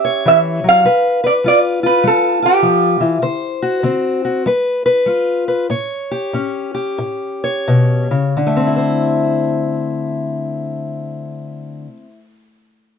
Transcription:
Already playing: steel-string acoustic guitar A2 C#4 G4, resonator guitar played with a steel bar E5
0.05 steel-string acoustic guitar C#5
0.26 steel-string acoustic guitar E3, resonator guitar played with a steel bar E5
0.64 steel-string acoustic guitar F#3
0.69 resonator guitar played with a steel bar F5
0.85 steel-string acoustic guitar G3 B4
1.24 steel-string acoustic guitar B4, resonator guitar played with a steel bar D5
1.44 steel-string acoustic guitar G3 F4, resonator guitar played with a steel bar D5
1.83 steel-string acoustic guitar F4, resonator guitar played with a steel bar B4
2.04 steel-string acoustic guitar G3, resonator guitar played with a steel bar A4
2.42 steel-string acoustic guitar F4, resonator guitar played with a steel bar G4
2.62 steel-string acoustic guitar F3
3.00 steel-string acoustic guitar E3
3.22 steel-string acoustic guitar D3 C5
3.62 steel-string acoustic guitar F#4
3.83 steel-string acoustic guitar D3 C4
4.25 steel-string acoustic guitar F#4
4.46 steel-string acoustic guitar G3 B4
4.86 steel-string acoustic guitar B4
5.06 steel-string acoustic guitar G3 F4
5.48 steel-string acoustic guitar B4
5.70 steel-string acoustic guitar A2 C#5
6.11 steel-string acoustic guitar G4
6.33 steel-string acoustic guitar A2 C#4
6.75 steel-string acoustic guitar G4
6.98 steel-string acoustic guitar A2
7.44 steel-string acoustic guitar C#5
7.68 steel-string acoustic guitar B2
8.11 steel-string acoustic guitar C#3
8.37 steel-string acoustic guitar D3
8.47 steel-string acoustic guitar A3
8.56 steel-string acoustic guitar C4
8.67 steel-string acoustic guitar E4
8.76 steel-string acoustic guitar C5

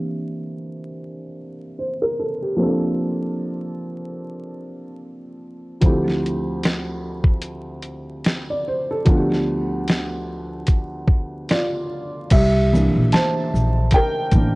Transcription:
Already playing: felt piano E3 A#3 C4 D4 G4 E5
1.79 felt piano C5
2.02 felt piano A#4
2.19 felt piano A4
2.42 felt piano G4
2.57 felt piano F3 A#3 C4
2.61 felt piano D4 A4
5.81 felt piano D2 F3 A3 C4, kick, closed hi-hat
5.86 felt piano E4 G4
6.08 snare
6.26 closed hi-hat
6.63 snare, closed hi-hat
7.24 kick
7.42 closed hi-hat
7.82 closed hi-hat
8.24 snare, closed hi-hat
8.50 felt piano D5
8.68 felt piano C5
8.91 felt piano A4
9.05 felt piano D2 F3 A3 B3, kick, closed hi-hat
9.10 felt piano D4 F4
9.18 felt piano G4
9.32 snare
9.88 snare, closed hi-hat
10.67 kick, closed hi-hat
11.08 kick
11.49 felt piano F4 D5, snare, closed hi-hat
12.30 upright bass C2, felt piano G4 E5, kick, closed hi-hat, crash
12.73 felt piano E3 A#3 D4, shaker
12.96 upright bass A#1
13.12 felt piano C5 A5, snare, closed hi-hat
13.54 upright bass A#1, shaker
13.91 felt piano G5, kick, closed hi-hat
13.96 felt piano A#4
14.32 upright bass A1, felt piano E3 A#3, kick, closed hi-hat, shaker
14.36 felt piano D4

